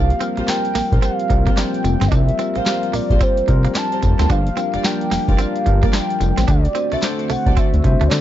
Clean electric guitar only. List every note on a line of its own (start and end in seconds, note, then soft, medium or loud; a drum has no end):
0.21 0.31 C4 medium
0.37 muted clean electric guitar stroke soft
0.75 0.86 A#3 medium
1.02 1.13 C4 medium
1.30 muted clean electric guitar stroke soft
1.47 1.53 A#3 medium
1.57 1.68 D4 medium
1.84 muted clean electric guitar stroke soft
2.01 2.08 C4 medium
2.12 2.23 D4 loud
2.39 2.50 C4 medium
2.56 muted clean electric guitar stroke soft
2.93 3.04 A#3 medium
3.21 3.32 C4 medium
3.48 muted clean electric guitar stroke soft
3.65 3.71 A#3 medium
3.75 3.86 D4 medium
4.03 muted clean electric guitar stroke soft
4.19 4.26 C4 medium
4.30 4.41 D4 medium
4.57 4.68 C4 medium
4.74 muted clean electric guitar stroke soft
5.11 5.22 A#3 medium
5.39 5.49 C4 medium
5.66 muted clean electric guitar stroke soft
5.83 5.90 A#3 medium
5.93 6.04 D4 medium
6.21 muted clean electric guitar stroke soft
6.38 6.44 C4 medium
6.48 6.59 D4 loud
6.75 6.86 C4 medium
6.92 muted clean electric guitar stroke soft
7.30 7.41 A3 medium
7.57 7.68 C4 medium
7.84 muted clean electric guitar stroke soft
8.01 8.08 A3 medium
8.11 8.21 D4 medium